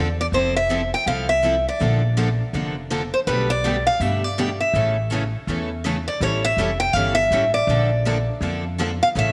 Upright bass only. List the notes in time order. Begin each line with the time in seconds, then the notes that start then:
Already playing: E2
0.32 F1
1.06 C2
1.81 A#1
2.53 F1
3.27 B1
4.00 G2
4.73 A1
5.47 E2
6.20 A1
6.57 F1
6.93 G1
7.31 A1
7.67 A#1
8.41 F2
9.15 A1